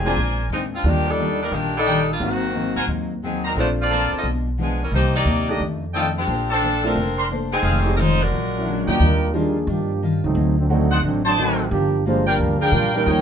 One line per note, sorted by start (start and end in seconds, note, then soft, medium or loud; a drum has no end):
0.00 0.13 F1 medium
0.00 0.18 D#3 medium
0.00 0.18 C4 medium
0.00 0.18 G4 medium
0.00 0.18 G#4 medium
0.05 0.16 G#3 medium
0.05 0.16 C4 medium
0.05 0.16 D4 medium
0.05 0.17 F4 medium
0.05 0.49 A#4 loud
0.05 0.48 C5 medium
0.05 0.49 D5 loud
0.05 0.48 G#5 loud
0.17 0.49 A#1 medium
0.17 0.40 A#2 medium
0.17 0.41 G#3 medium
0.17 0.41 C4 soft
0.17 0.41 D4 medium
0.50 0.82 E2 medium
0.50 0.75 A#2 medium
0.50 0.62 F3 medium
0.50 0.62 G#3 medium
0.50 0.75 G#3 medium
0.50 0.75 C4 medium
0.50 0.62 C4 medium
0.50 0.75 D4 medium
0.50 0.62 D#4 medium
0.74 0.85 G#3 medium
0.74 0.85 C4 medium
0.74 0.85 D4 medium
0.74 0.85 F4 medium
0.84 1.49 D#2 medium
0.84 1.09 D#3 soft
0.84 1.08 D#3 medium
0.84 1.36 G3 medium
0.84 1.09 G3 medium
0.84 1.36 A#3 soft
0.84 1.08 A#3 medium
0.84 1.10 A#3 medium
0.84 1.07 D4 medium
0.84 1.37 F4 medium
0.84 1.08 G4 medium
0.84 1.37 D5 medium
0.88 1.10 D4 medium
1.08 1.42 G3 medium
1.08 1.42 D4 medium
1.08 1.42 D#4 medium
1.08 1.42 A4 loud
1.19 1.42 D#3 medium
1.19 1.42 G3 medium
1.19 1.42 A#3 medium
1.19 1.42 D4 medium
1.43 1.53 G3 medium
1.43 1.53 D4 medium
1.43 1.53 D#4 medium
1.43 1.53 A#4 medium
1.52 2.17 A#1 medium
1.52 1.76 D#3 soft
1.52 1.75 D#3 medium
1.52 1.76 G3 soft
1.52 1.75 A#3 medium
1.52 1.77 A#3 soft
1.52 1.75 D4 medium
1.52 1.77 D4 soft
1.52 1.75 G4 loud
1.77 2.07 G3 medium
1.77 2.08 D4 medium
1.77 2.07 D#4 medium
1.77 2.08 A4 loud
1.86 2.10 D#3 medium
1.86 2.11 G3 medium
1.86 2.11 A#3 medium
1.86 2.11 D4 medium
1.86 2.01 A#4 medium
1.86 2.01 D5 medium
1.86 2.01 D#5 medium
1.86 2.01 G5 loud
2.12 2.22 G3 medium
2.12 2.21 A#3 medium
2.12 2.22 D4 medium
2.12 2.22 F4 medium
2.20 2.72 G#1 medium
2.20 2.44 G#2 soft
2.20 2.85 D#3 medium
2.20 2.45 F#3 medium
2.20 3.15 A#3 medium
2.20 2.85 A#3 medium
2.20 2.45 A#3 soft
2.20 3.15 C4 soft
2.20 2.85 C4 medium
2.20 2.45 C4 medium
2.20 3.16 D#4 medium
2.20 3.16 F#4 medium
2.20 2.85 F#4 medium
2.54 2.78 G#2 medium
2.54 2.78 F#3 medium
2.54 2.78 A#3 medium
2.54 2.78 C4 medium
2.76 2.87 A1 medium
2.76 2.85 A#4 medium
2.76 2.85 C5 medium
2.76 2.85 F#5 medium
2.76 2.85 G#5 loud
2.87 3.52 D#2 medium
2.87 3.12 G#2 soft
2.87 3.12 F#3 medium
2.87 3.12 A#3 medium
2.87 3.13 C4 soft
3.23 3.46 G#2 medium
3.23 3.46 F#3 medium
3.23 3.44 F#3 medium
3.23 3.46 A#3 medium
3.23 3.44 C4 medium
3.23 3.47 C4 medium
3.23 3.44 D#4 medium
3.23 3.44 G#4 medium
3.44 3.58 F#3 medium
3.44 3.58 C4 medium
3.44 3.58 D#4 medium
3.44 3.52 A#4 medium
3.44 3.58 A#4 medium
3.44 3.52 C5 medium
3.44 3.52 D5 medium
3.44 3.52 A#5 medium
3.56 4.08 A#1 medium
3.56 3.69 A3 medium
3.56 3.79 A#3 soft
3.56 4.25 C4 medium
3.56 3.80 D4 medium
3.56 4.25 D4 medium
3.56 4.25 F4 medium
3.56 3.68 F4 medium
3.56 4.24 A4 medium
3.56 3.80 A4 soft
3.56 3.80 C5 medium
3.56 3.69 C5 medium
3.60 3.69 D4 medium
3.81 4.12 C4 medium
3.81 4.12 F4 medium
3.81 4.12 A4 medium
3.81 4.12 D5 loud
3.90 4.13 A#3 medium
3.90 4.14 D4 medium
3.90 4.14 A4 medium
3.90 4.24 A#4 medium
3.90 4.24 C5 medium
3.90 4.14 C5 medium
3.90 4.24 D5 medium
3.90 4.24 A5 medium
4.12 muted upright bass stroke soft
4.17 4.27 C4 medium
4.17 4.27 F4 medium
4.17 4.27 A4 medium
4.17 4.27 D#5 medium
4.24 4.88 B1 medium
4.24 4.47 B2 soft
4.24 4.48 F3 soft
4.24 4.48 G#3 soft
4.24 4.48 D4 soft
4.58 4.81 B2 soft
4.58 4.81 F3 medium
4.58 4.82 G#3 medium
4.58 4.80 B3 medium
4.58 4.82 D4 medium
4.58 4.80 G#4 medium
4.62 4.81 D4 medium
4.83 4.93 G3 medium
4.83 4.93 C#4 medium
4.83 4.93 E4 medium
4.83 4.93 A#4 medium
4.92 5.23 C2 medium
4.92 5.15 C3 soft
4.92 5.16 F3 medium
4.92 5.16 A#3 soft
4.92 5.14 A#3 medium
4.92 5.14 D#4 medium
4.92 5.17 D#4 medium
4.92 5.14 G4 medium
4.92 5.14 C5 medium
5.16 5.47 A#3 medium
5.16 5.47 D#4 medium
5.16 5.47 G4 medium
5.16 5.47 D5 medium
5.25 5.57 D#2 medium
5.25 5.49 C3 medium
5.25 5.49 F3 medium
5.25 5.50 A#3 medium
5.25 5.50 D#4 medium
5.49 5.59 A3 medium
5.49 5.61 A#3 medium
5.49 5.59 D4 medium
5.49 5.61 D4 medium
5.49 5.59 D#4 medium
5.49 5.61 G4 medium
5.49 5.60 G4 medium
5.49 5.61 D#5 medium
5.59 5.83 F2 soft
5.59 6.24 F2 medium
5.59 5.83 D#3 soft
5.59 5.84 A3 medium
5.59 5.84 D4 soft
5.94 6.17 F2 medium
5.94 6.17 D#3 medium
5.94 6.17 A3 medium
5.94 6.04 A3 medium
5.94 6.05 C4 medium
5.94 6.18 D4 medium
5.94 6.04 D#4 medium
5.94 6.05 F4 medium
5.94 6.09 A4 medium
5.94 6.09 D5 medium
5.94 6.09 D#5 medium
5.94 6.09 G5 medium
6.18 6.49 F3 medium
6.18 6.49 C4 medium
6.18 6.49 D4 medium
6.18 6.49 G4 medium
6.27 6.92 A#1 medium
6.27 6.51 A#3 soft
6.27 6.52 D4 soft
6.27 6.52 A4 soft
6.27 6.52 C5 medium
6.50 6.82 F3 medium
6.50 6.83 C4 medium
6.50 6.83 D4 medium
6.50 6.93 A4 loud
6.50 6.83 A4 medium
6.50 6.93 C5 medium
6.50 6.93 D5 medium
6.50 6.93 A5 loud
6.62 6.85 A#3 medium
6.62 6.85 D4 medium
6.62 6.86 A4 medium
6.62 6.86 C5 medium
6.83 7.28 F3 medium
6.83 6.94 A3 medium
6.83 6.94 C4 medium
6.83 7.28 C4 medium
6.83 6.95 D4 medium
6.83 7.28 D4 medium
6.83 6.95 F4 medium
6.83 7.27 A#4 medium
6.95 7.60 F1 medium
6.95 7.19 A#3 soft
6.95 7.19 D4 soft
6.95 7.20 A4 soft
6.95 7.20 C5 medium
7.18 7.26 A#4 medium
7.18 7.26 C5 medium
7.18 7.26 D5 medium
7.18 7.26 C6 medium
7.30 7.53 A#3 medium
7.30 7.54 D4 medium
7.30 7.54 A4 medium
7.30 7.54 C5 medium
7.53 7.92 F3 medium
7.53 7.92 C4 medium
7.53 7.92 D#4 medium
7.53 7.92 G#4 medium
7.63 8.28 F1 loud
7.63 7.87 F2 soft
7.63 7.87 D#3 soft
7.63 7.87 G#3 medium
7.63 7.88 C4 medium
7.63 7.79 G#4 medium
7.63 7.79 C5 medium
7.63 7.79 D#5 medium
7.63 7.79 F5 medium
7.85 7.96 G#3 medium
7.85 7.96 C4 medium
7.85 7.96 D#4 medium
7.85 7.96 G4 medium
7.97 8.21 F2 medium
7.97 8.21 D#3 medium
7.97 8.21 G#3 medium
7.97 8.22 C4 medium
7.97 8.21 D#4 medium
7.97 8.21 F4 medium
7.97 7.99 A#4 medium
7.97 8.21 C5 loud
8.01 8.21 G#3 medium
8.22 8.89 G#3 medium
8.22 8.89 D4 medium
8.22 8.89 F#4 medium
8.22 8.88 A#4 medium
8.31 8.84 A#1 medium
8.31 8.55 A#2 soft
8.31 8.55 F#3 soft
8.31 8.55 G#3 medium
8.31 8.56 D4 medium
8.56 8.66 F#3 medium
8.56 8.66 A#3 medium
8.56 8.66 C#4 medium
8.56 8.66 E4 medium
8.65 8.88 A#2 medium
8.65 9.01 D3 medium
8.65 8.89 F#3 medium
8.65 8.89 G#3 medium
8.65 9.01 G#3 medium
8.65 9.01 C#4 medium
8.65 8.89 D4 medium
8.65 9.01 F#4 medium
8.87 8.98 D#2 medium
8.87 8.99 A#2 medium
8.87 8.98 G3 soft
8.87 8.99 A#3 medium
8.87 8.99 D4 medium
8.87 9.31 D#4 medium
8.87 8.99 F4 medium
8.87 9.31 G4 medium
8.87 9.31 D5 medium
8.87 9.31 G5 loud
9.00 9.64 D#2 medium
9.00 9.23 D#3 soft
9.00 9.23 G3 soft
9.00 9.34 G3 medium
9.00 9.34 D4 medium
9.00 9.24 D4 soft
9.00 9.34 F4 medium
9.00 9.24 F4 medium
9.00 9.34 A#4 loud
9.33 9.53 D#3 medium
9.33 9.57 D#3 medium
9.33 9.66 F3 medium
9.33 9.57 G3 medium
9.33 9.53 G3 soft
9.33 9.53 A#3 medium
9.33 9.65 A#3 medium
9.33 9.57 D4 medium
9.33 9.54 D4 medium
9.33 9.66 D4 medium
9.33 9.57 F4 medium
9.33 9.54 F4 medium
9.33 9.66 G#4 medium
9.67 10.19 G2 medium
9.67 9.91 D#3 soft
9.67 10.02 F3 medium
9.67 9.91 G3 soft
9.67 10.02 A#3 medium
9.67 9.91 D4 soft
9.67 10.02 D4 medium
9.67 9.91 F4 soft
9.67 10.02 G4 loud
10.03 10.25 D#3 medium
10.03 10.26 G3 medium
10.03 10.26 D4 medium
10.03 10.26 F4 medium
10.23 10.34 C#2 medium
10.23 10.55 F#3 medium
10.23 10.55 A3 medium
10.23 10.55 C4 medium
10.23 10.55 D#4 medium
10.35 10.99 D2 medium
10.35 10.59 D3 soft
10.35 10.59 F#3 medium
10.35 10.59 C4 medium
10.35 10.60 D#4 medium
10.58 10.69 F#3 medium
10.58 10.69 A3 medium
10.58 10.69 C4 medium
10.58 10.69 D4 medium
10.69 10.93 D3 medium
10.69 10.89 D#3 medium
10.69 10.93 F#3 medium
10.69 11.01 F#3 medium
10.69 10.89 A3 medium
10.69 11.01 A3 medium
10.69 10.89 C4 medium
10.69 10.93 C4 medium
10.69 11.01 C4 medium
10.69 10.89 D4 medium
10.69 11.02 D#4 medium
10.69 10.93 D#4 medium
10.69 10.89 F#4 medium
10.91 10.99 C5 medium
10.91 10.99 D5 medium
10.91 10.99 D#5 medium
10.91 10.99 F#5 loud
11.03 11.67 A1 medium
11.03 11.27 D3 soft
11.03 11.24 F#3 medium
11.03 11.27 F#3 soft
11.03 11.24 A3 medium
11.03 11.24 C4 medium
11.03 11.28 C4 soft
11.03 11.24 D4 medium
11.03 11.28 D#4 medium
11.25 11.36 F#3 medium
11.25 11.36 A3 medium
11.25 11.36 C4 medium
11.25 11.36 D4 medium
11.25 11.69 C5 loud
11.25 11.69 D5 medium
11.25 11.69 D#5 medium
11.25 11.69 A5 loud
11.37 11.61 D3 medium
11.37 11.72 D#3 medium
11.37 11.61 F#3 medium
11.37 11.71 A3 medium
11.37 11.71 C4 medium
11.37 11.61 C4 medium
11.37 11.61 D#4 medium
11.37 11.72 F#4 medium
11.71 12.36 G1 medium
11.71 11.95 G2 medium
11.71 12.03 F3 medium
11.71 11.95 F3 medium
11.71 12.02 A#3 medium
11.71 11.95 A#3 medium
11.71 12.03 D4 medium
11.71 11.96 D4 medium
11.71 12.03 G4 loud
12.06 12.29 G2 medium
12.06 12.57 F3 medium
12.06 12.29 F3 medium
12.06 12.58 G3 soft
12.06 12.26 G#3 medium
12.06 12.29 A#3 medium
12.06 12.58 A#3 soft
12.06 12.25 D4 medium
12.06 12.57 D4 soft
12.06 12.30 D4 medium
12.06 12.25 F4 medium
12.06 12.58 F4 medium
12.06 12.26 C5 loud
12.26 12.61 G3 loud
12.26 12.60 D4 medium
12.26 12.61 F4 medium
12.26 12.61 A#4 loud
12.26 12.35 A#4 medium
12.26 12.35 D5 medium
12.26 12.35 F5 medium
12.26 12.35 G5 loud
12.38 12.70 D2 medium
12.38 12.63 G2 soft
12.38 12.63 F3 soft
12.38 12.63 A#3 medium
12.38 12.63 D4 soft
12.61 12.73 F3 medium
12.61 12.73 A#3 medium
12.61 12.71 D4 medium
12.61 12.73 G#4 loud
12.61 13.05 A#4 loud
12.61 13.05 D5 medium
12.61 13.05 F5 medium
12.61 13.05 G5 loud
12.72 12.96 G2 medium
12.72 13.04 A#2 medium
12.72 12.97 F3 medium
12.72 12.94 G3 medium
12.72 12.97 A#3 medium
12.72 12.95 D4 medium
12.72 12.97 D4 medium
12.72 12.95 F4 medium
12.72 12.94 A#4 loud
12.95 13.21 G3 medium
12.95 13.21 C#4 medium
12.95 13.21 D#4 medium
12.95 13.21 A#4 loud
13.06 13.21 D#2 medium
13.06 13.21 D#3 soft
13.06 13.21 F3 medium
13.06 13.21 G3 medium
13.06 13.21 A#3 medium
13.06 13.21 A#3 soft
13.06 13.21 C#4 medium
13.06 13.21 C#4 soft
13.06 13.21 D#4 medium
13.06 13.21 G4 medium
13.06 13.21 A#4 medium
13.06 13.21 C#5 medium
13.06 13.21 D#5 medium
13.06 13.21 G5 loud